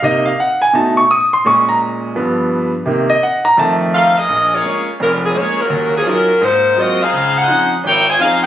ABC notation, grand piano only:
X:1
M:4/4
L:1/8
Q:"Swing" 1/4=169
K:Bbm
V:1 name="Grand piano"
e f g a =a d' ^d' c' | d' b z6 | z e g b =a z3 | z8 |
z8 | z8 |]
V:2 name="Grand piano" clef=bass
[C,B,E] z3 [=B,,=A,^D] z3 | [B,,A,D]4 [=G,,F,=B,]3 z | [C,E,B,] z3 [F,,E,=A,]3 z | B,,,2 [A,B,D] z [F,,,F,,]2 [A,B,D] z |
E,,2 [G,DEF] z A,,2 [G,A,B,CF] z | D,,2 [F,CDE] z A,,,2 [F,CDE] z |]